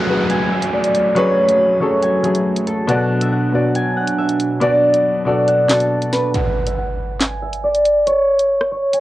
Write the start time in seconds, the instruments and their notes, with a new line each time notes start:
Already playing: grand piano F#3 C#4 G#4 A4, analog synth pad F#3 A3 F#4, harp A4 B4 D5 E5 F#5, downlifter
0.07 grand piano F#3 C#4 G#4 B4
0.30 harp G#5, closed hi-hat
0.51 harp E5
0.62 closed hi-hat
0.73 harp D5
0.84 closed hi-hat
0.95 closed hi-hat
1.15 grand piano F#3 C#4 G#4 B4, harp C#5, closed hi-hat
1.49 closed hi-hat
1.80 grand piano F#3 C#4 G#4 A4, harp C#5
2.02 harp G#5, closed hi-hat
2.23 grand piano F#3 A3 C#4 G#4, harp G#4, closed hi-hat
2.35 closed hi-hat
2.57 closed hi-hat
2.67 harp A4, closed hi-hat
2.88 grand piano B2 B3 F#4 D5, analog synth pad B2 F#3 D4, harp F#5, closed hi-hat
3.21 harp E5, closed hi-hat
3.32 harp F#5
3.53 grand piano B2 B3 F#4 D5
3.75 harp G#5, closed hi-hat
3.97 harp F#5
4.08 closed hi-hat
4.18 harp E5
4.29 closed hi-hat
4.40 closed hi-hat
4.60 grand piano B2 B3 F#4 D5, harp D5, closed hi-hat
4.94 closed hi-hat
5.25 grand piano B2 B3 F#4 A4, harp D5
5.48 harp F#5, closed hi-hat
5.68 grand piano B2 B3 F#4 D5, harp A4, snare, clap, closed hi-hat
5.80 closed hi-hat
6.02 closed hi-hat
6.13 harp B4, snare, closed hi-hat
6.34 harp F#5, closed hi-hat, impact
6.67 harp E5, closed hi-hat
6.77 harp F#5
7.20 harp G#5, snare, clap, closed hi-hat
7.42 harp E5
7.53 closed hi-hat
7.64 harp D5
7.75 closed hi-hat
7.85 closed hi-hat
8.07 harp C#5, closed hi-hat
8.39 closed hi-hat
8.61 cross-stick
8.72 harp C#5
8.93 harp G#5, closed hi-hat